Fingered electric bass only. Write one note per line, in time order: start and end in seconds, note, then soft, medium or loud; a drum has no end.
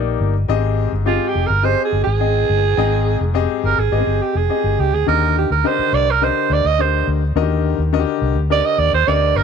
0.00 0.16 A#1 medium
0.20 0.45 G1 loud
0.49 0.86 G#1 loud
0.92 1.17 G1 medium
1.35 1.47 F1 medium
1.50 1.74 G1 medium
1.92 2.04 G1 medium
2.07 2.43 G#1 medium
2.49 2.74 G1 loud
2.78 3.15 G#1 loud
3.21 3.45 F1 medium
3.64 3.76 G1 medium
3.78 3.90 G#1 medium
3.92 4.04 G#1 loud
4.07 4.19 G1 medium
4.35 4.47 F1 medium
4.64 4.76 G1 medium
4.79 4.91 C#2 loud
4.93 5.05 D2 medium
5.08 5.44 D#2 loud
5.50 5.62 D2 medium
5.79 muted fingered electric bass stroke soft
5.93 6.30 C2 medium
6.50 6.62 D2 medium
6.65 7.01 D2 medium
7.07 7.32 D2 medium
7.35 7.73 D#2 loud
7.78 8.03 D#2 medium
8.21 8.34 C2 medium
8.35 8.60 D2 medium
8.78 8.91 D#2 medium
8.93 9.06 D#2 medium
9.08 9.32 D2 medium
9.36 9.43 G1 medium